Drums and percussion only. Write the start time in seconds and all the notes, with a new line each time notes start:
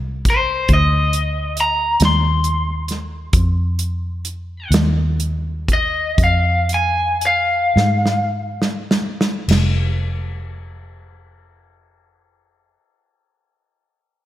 0.25 kick, closed hi-hat
0.69 kick, closed hi-hat
1.13 closed hi-hat
1.57 closed hi-hat
2.00 snare, closed hi-hat
2.44 closed hi-hat
2.88 snare, closed hi-hat
3.33 kick, closed hi-hat
3.79 closed hi-hat
4.25 closed hi-hat
4.72 snare, closed hi-hat
5.20 closed hi-hat
5.68 kick, closed hi-hat
6.18 kick, closed hi-hat
6.69 closed hi-hat
7.21 closed hi-hat
7.77 snare
8.06 snare
8.62 snare
8.91 snare
9.21 snare
9.49 snare, crash